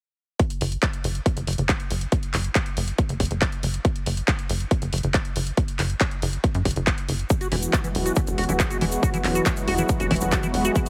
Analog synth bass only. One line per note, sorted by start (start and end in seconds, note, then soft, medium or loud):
0.61 0.77 F#1 loud
1.04 1.20 F#1 loud
1.36 1.44 F#1 medium
1.47 1.55 F#1 loud
1.58 1.74 F#1 medium
1.91 2.06 F#1 medium
2.34 2.49 F#1 loud
2.77 2.93 F#1 loud
3.09 3.17 F#1 medium
3.20 3.28 F#1 medium
3.31 3.47 F#1 medium
3.63 3.79 F#1 medium
4.06 4.22 F#1 loud
4.50 4.65 F#1 loud
4.82 4.90 F#1 medium
4.93 5.01 F#1 medium
5.04 5.19 F#1 medium
5.36 5.52 F#1 medium
5.79 5.95 F#1 loud
6.22 6.38 F#1 loud
6.55 6.62 F#2 medium
6.65 6.73 F#1 medium
6.76 6.92 F#1 medium
7.09 7.24 F#1 medium
7.52 7.67 E1 loud
7.95 8.11 E1 loud
8.27 8.35 E1 medium
8.38 8.46 E1 medium
8.49 8.65 E1 medium
8.81 8.97 E1 medium
9.24 9.40 E1 loud
9.67 9.83 E1 loud
10.00 10.08 E1 medium
10.11 10.19 E1 loud
10.21 10.37 E1 medium
10.54 10.70 E1 medium